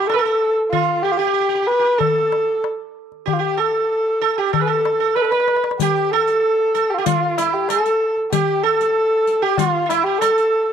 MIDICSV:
0, 0, Header, 1, 5, 480
1, 0, Start_track
1, 0, Tempo, 632244
1, 560, Time_signature, 4, 2, 24, 8
1, 8144, End_track
2, 0, Start_track
2, 0, Title_t, "Kamancheh"
2, 0, Program_c, 0, 110
2, 53, Note_on_c, 0, 69, 89
2, 124, Note_on_c, 0, 71, 75
2, 135, Note_off_c, 0, 69, 0
2, 163, Note_on_c, 0, 69, 92
2, 174, Note_off_c, 0, 71, 0
2, 428, Note_off_c, 0, 69, 0
2, 538, Note_on_c, 0, 65, 90
2, 779, Note_on_c, 0, 67, 93
2, 791, Note_off_c, 0, 65, 0
2, 848, Note_on_c, 0, 65, 80
2, 859, Note_off_c, 0, 67, 0
2, 889, Note_on_c, 0, 67, 88
2, 901, Note_off_c, 0, 65, 0
2, 1268, Note_on_c, 0, 71, 91
2, 1279, Note_off_c, 0, 67, 0
2, 1511, Note_on_c, 0, 69, 95
2, 1522, Note_off_c, 0, 71, 0
2, 1996, Note_off_c, 0, 69, 0
2, 2492, Note_on_c, 0, 67, 75
2, 2531, Note_on_c, 0, 65, 67
2, 2543, Note_off_c, 0, 67, 0
2, 2584, Note_on_c, 0, 67, 79
2, 2596, Note_off_c, 0, 65, 0
2, 2728, Note_on_c, 0, 69, 78
2, 2740, Note_off_c, 0, 67, 0
2, 3330, Note_on_c, 0, 67, 70
2, 3341, Note_off_c, 0, 69, 0
2, 3441, Note_on_c, 0, 69, 82
2, 3452, Note_off_c, 0, 67, 0
2, 3914, Note_on_c, 0, 71, 86
2, 3926, Note_off_c, 0, 69, 0
2, 3961, Note_on_c, 0, 69, 70
2, 3972, Note_off_c, 0, 71, 0
2, 4030, Note_on_c, 0, 71, 81
2, 4041, Note_off_c, 0, 69, 0
2, 4282, Note_off_c, 0, 71, 0
2, 4405, Note_on_c, 0, 67, 78
2, 4641, Note_on_c, 0, 69, 87
2, 4652, Note_off_c, 0, 67, 0
2, 5241, Note_on_c, 0, 67, 71
2, 5253, Note_off_c, 0, 69, 0
2, 5269, Note_on_c, 0, 65, 58
2, 5281, Note_off_c, 0, 67, 0
2, 5300, Note_on_c, 0, 67, 65
2, 5312, Note_off_c, 0, 65, 0
2, 5349, Note_on_c, 0, 65, 87
2, 5361, Note_off_c, 0, 67, 0
2, 5601, Note_on_c, 0, 64, 79
2, 5613, Note_off_c, 0, 65, 0
2, 5721, Note_on_c, 0, 67, 79
2, 5733, Note_off_c, 0, 64, 0
2, 5831, Note_on_c, 0, 69, 94
2, 5843, Note_off_c, 0, 67, 0
2, 6196, Note_off_c, 0, 69, 0
2, 6317, Note_on_c, 0, 67, 88
2, 6552, Note_on_c, 0, 69, 93
2, 6564, Note_off_c, 0, 67, 0
2, 7159, Note_on_c, 0, 67, 82
2, 7170, Note_off_c, 0, 69, 0
2, 7269, Note_on_c, 0, 65, 92
2, 7281, Note_off_c, 0, 67, 0
2, 7509, Note_on_c, 0, 64, 80
2, 7520, Note_off_c, 0, 65, 0
2, 7620, Note_on_c, 0, 67, 82
2, 7632, Note_off_c, 0, 64, 0
2, 7734, Note_on_c, 0, 69, 101
2, 7745, Note_off_c, 0, 67, 0
2, 8106, Note_off_c, 0, 69, 0
2, 8144, End_track
3, 0, Start_track
3, 0, Title_t, "Sitar"
3, 0, Program_c, 1, 104
3, 71, Note_on_c, 1, 69, 66
3, 103, Note_off_c, 1, 69, 0
3, 103, Note_on_c, 1, 71, 67
3, 131, Note_off_c, 1, 71, 0
3, 140, Note_on_c, 1, 69, 70
3, 182, Note_off_c, 1, 69, 0
3, 191, Note_on_c, 1, 69, 66
3, 425, Note_off_c, 1, 69, 0
3, 551, Note_on_c, 1, 65, 74
3, 789, Note_off_c, 1, 65, 0
3, 792, Note_on_c, 1, 67, 66
3, 893, Note_off_c, 1, 67, 0
3, 902, Note_on_c, 1, 67, 71
3, 954, Note_off_c, 1, 67, 0
3, 963, Note_on_c, 1, 67, 55
3, 1003, Note_off_c, 1, 67, 0
3, 1012, Note_on_c, 1, 67, 59
3, 1057, Note_off_c, 1, 67, 0
3, 1066, Note_on_c, 1, 67, 47
3, 1122, Note_off_c, 1, 67, 0
3, 1131, Note_on_c, 1, 67, 46
3, 1167, Note_off_c, 1, 67, 0
3, 1176, Note_on_c, 1, 67, 46
3, 1223, Note_off_c, 1, 67, 0
3, 1232, Note_on_c, 1, 67, 48
3, 1288, Note_off_c, 1, 67, 0
3, 1297, Note_on_c, 1, 67, 48
3, 1353, Note_off_c, 1, 67, 0
3, 1362, Note_on_c, 1, 67, 54
3, 1391, Note_off_c, 1, 67, 0
3, 1400, Note_on_c, 1, 67, 50
3, 1469, Note_off_c, 1, 67, 0
3, 1504, Note_on_c, 1, 69, 61
3, 1962, Note_off_c, 1, 69, 0
3, 2472, Note_on_c, 1, 67, 61
3, 2564, Note_off_c, 1, 67, 0
3, 2573, Note_on_c, 1, 67, 60
3, 2704, Note_off_c, 1, 67, 0
3, 2713, Note_on_c, 1, 69, 73
3, 3167, Note_off_c, 1, 69, 0
3, 3200, Note_on_c, 1, 69, 69
3, 3321, Note_off_c, 1, 69, 0
3, 3324, Note_on_c, 1, 67, 68
3, 3436, Note_off_c, 1, 67, 0
3, 3439, Note_on_c, 1, 69, 67
3, 3495, Note_off_c, 1, 69, 0
3, 3500, Note_on_c, 1, 71, 53
3, 3547, Note_on_c, 1, 69, 60
3, 3550, Note_off_c, 1, 71, 0
3, 3787, Note_off_c, 1, 69, 0
3, 3797, Note_on_c, 1, 69, 62
3, 3916, Note_on_c, 1, 71, 61
3, 3922, Note_off_c, 1, 69, 0
3, 4024, Note_off_c, 1, 71, 0
3, 4033, Note_on_c, 1, 71, 62
3, 4266, Note_off_c, 1, 71, 0
3, 4418, Note_on_c, 1, 67, 72
3, 4651, Note_off_c, 1, 67, 0
3, 4654, Note_on_c, 1, 69, 75
3, 5097, Note_off_c, 1, 69, 0
3, 5121, Note_on_c, 1, 69, 67
3, 5299, Note_off_c, 1, 69, 0
3, 5302, Note_on_c, 1, 67, 66
3, 5357, Note_off_c, 1, 67, 0
3, 5360, Note_on_c, 1, 65, 63
3, 5583, Note_off_c, 1, 65, 0
3, 5602, Note_on_c, 1, 64, 67
3, 5842, Note_off_c, 1, 64, 0
3, 5845, Note_on_c, 1, 69, 69
3, 6178, Note_off_c, 1, 69, 0
3, 6320, Note_on_c, 1, 67, 76
3, 6552, Note_off_c, 1, 67, 0
3, 6555, Note_on_c, 1, 69, 81
3, 7150, Note_off_c, 1, 69, 0
3, 7153, Note_on_c, 1, 67, 75
3, 7270, Note_off_c, 1, 67, 0
3, 7273, Note_on_c, 1, 65, 70
3, 7475, Note_off_c, 1, 65, 0
3, 7484, Note_on_c, 1, 65, 56
3, 7517, Note_off_c, 1, 65, 0
3, 7520, Note_on_c, 1, 64, 69
3, 7636, Note_off_c, 1, 64, 0
3, 7639, Note_on_c, 1, 67, 66
3, 7749, Note_off_c, 1, 67, 0
3, 7752, Note_on_c, 1, 69, 75
3, 8089, Note_off_c, 1, 69, 0
3, 8144, End_track
4, 0, Start_track
4, 0, Title_t, "Darbuka"
4, 73, Note_on_c, 9, 63, 66
4, 149, Note_off_c, 9, 63, 0
4, 432, Note_on_c, 9, 62, 21
4, 508, Note_off_c, 9, 62, 0
4, 553, Note_on_c, 9, 64, 72
4, 628, Note_off_c, 9, 64, 0
4, 918, Note_on_c, 9, 62, 23
4, 994, Note_off_c, 9, 62, 0
4, 1040, Note_on_c, 9, 62, 23
4, 1116, Note_off_c, 9, 62, 0
4, 1284, Note_on_c, 9, 62, 25
4, 1360, Note_off_c, 9, 62, 0
4, 1522, Note_on_c, 9, 64, 84
4, 1598, Note_off_c, 9, 64, 0
4, 1764, Note_on_c, 9, 63, 70
4, 1840, Note_off_c, 9, 63, 0
4, 1892, Note_on_c, 9, 62, 25
4, 1968, Note_off_c, 9, 62, 0
4, 2005, Note_on_c, 9, 63, 71
4, 2081, Note_off_c, 9, 63, 0
4, 2367, Note_on_c, 9, 62, 22
4, 2443, Note_off_c, 9, 62, 0
4, 2486, Note_on_c, 9, 64, 76
4, 2562, Note_off_c, 9, 64, 0
4, 2970, Note_on_c, 9, 62, 23
4, 3046, Note_off_c, 9, 62, 0
4, 3209, Note_on_c, 9, 62, 25
4, 3285, Note_off_c, 9, 62, 0
4, 3330, Note_on_c, 9, 62, 26
4, 3406, Note_off_c, 9, 62, 0
4, 3444, Note_on_c, 9, 64, 84
4, 3520, Note_off_c, 9, 64, 0
4, 3685, Note_on_c, 9, 63, 80
4, 3761, Note_off_c, 9, 63, 0
4, 3810, Note_on_c, 9, 62, 25
4, 3886, Note_off_c, 9, 62, 0
4, 3922, Note_on_c, 9, 63, 56
4, 3983, Note_on_c, 9, 62, 58
4, 3998, Note_off_c, 9, 63, 0
4, 4040, Note_on_c, 9, 63, 67
4, 4059, Note_off_c, 9, 62, 0
4, 4100, Note_on_c, 9, 62, 65
4, 4116, Note_off_c, 9, 63, 0
4, 4159, Note_on_c, 9, 63, 72
4, 4176, Note_off_c, 9, 62, 0
4, 4224, Note_on_c, 9, 62, 68
4, 4235, Note_off_c, 9, 63, 0
4, 4281, Note_on_c, 9, 63, 71
4, 4300, Note_off_c, 9, 62, 0
4, 4336, Note_on_c, 9, 62, 85
4, 4357, Note_off_c, 9, 63, 0
4, 4400, Note_on_c, 9, 64, 84
4, 4412, Note_off_c, 9, 62, 0
4, 4476, Note_off_c, 9, 64, 0
4, 4763, Note_on_c, 9, 62, 28
4, 4839, Note_off_c, 9, 62, 0
4, 4883, Note_on_c, 9, 62, 26
4, 4959, Note_off_c, 9, 62, 0
4, 5126, Note_on_c, 9, 62, 25
4, 5201, Note_off_c, 9, 62, 0
4, 5363, Note_on_c, 9, 64, 99
4, 5439, Note_off_c, 9, 64, 0
4, 5603, Note_on_c, 9, 63, 76
4, 5679, Note_off_c, 9, 63, 0
4, 5723, Note_on_c, 9, 62, 30
4, 5799, Note_off_c, 9, 62, 0
4, 5837, Note_on_c, 9, 63, 71
4, 5913, Note_off_c, 9, 63, 0
4, 6204, Note_on_c, 9, 62, 27
4, 6280, Note_off_c, 9, 62, 0
4, 6321, Note_on_c, 9, 64, 93
4, 6396, Note_off_c, 9, 64, 0
4, 6683, Note_on_c, 9, 62, 30
4, 6759, Note_off_c, 9, 62, 0
4, 6800, Note_on_c, 9, 62, 24
4, 6876, Note_off_c, 9, 62, 0
4, 7039, Note_on_c, 9, 62, 27
4, 7115, Note_off_c, 9, 62, 0
4, 7270, Note_on_c, 9, 64, 96
4, 7346, Note_off_c, 9, 64, 0
4, 7515, Note_on_c, 9, 63, 69
4, 7591, Note_off_c, 9, 63, 0
4, 7635, Note_on_c, 9, 62, 28
4, 7711, Note_off_c, 9, 62, 0
4, 7755, Note_on_c, 9, 63, 67
4, 7831, Note_off_c, 9, 63, 0
4, 8144, End_track
5, 0, Start_track
5, 0, Title_t, "Riq"
5, 4404, Note_on_c, 9, 54, 52
5, 4480, Note_off_c, 9, 54, 0
5, 4763, Note_on_c, 9, 54, 17
5, 4839, Note_off_c, 9, 54, 0
5, 5123, Note_on_c, 9, 54, 19
5, 5199, Note_off_c, 9, 54, 0
5, 5360, Note_on_c, 9, 54, 54
5, 5436, Note_off_c, 9, 54, 0
5, 5604, Note_on_c, 9, 54, 47
5, 5680, Note_off_c, 9, 54, 0
5, 5846, Note_on_c, 9, 54, 43
5, 5922, Note_off_c, 9, 54, 0
5, 5965, Note_on_c, 9, 54, 18
5, 6041, Note_off_c, 9, 54, 0
5, 6320, Note_on_c, 9, 54, 53
5, 6396, Note_off_c, 9, 54, 0
5, 6687, Note_on_c, 9, 54, 19
5, 6762, Note_off_c, 9, 54, 0
5, 7040, Note_on_c, 9, 54, 21
5, 7116, Note_off_c, 9, 54, 0
5, 7281, Note_on_c, 9, 54, 55
5, 7357, Note_off_c, 9, 54, 0
5, 7517, Note_on_c, 9, 54, 49
5, 7593, Note_off_c, 9, 54, 0
5, 7758, Note_on_c, 9, 54, 41
5, 7834, Note_off_c, 9, 54, 0
5, 7879, Note_on_c, 9, 54, 16
5, 7954, Note_off_c, 9, 54, 0
5, 8144, End_track
0, 0, End_of_file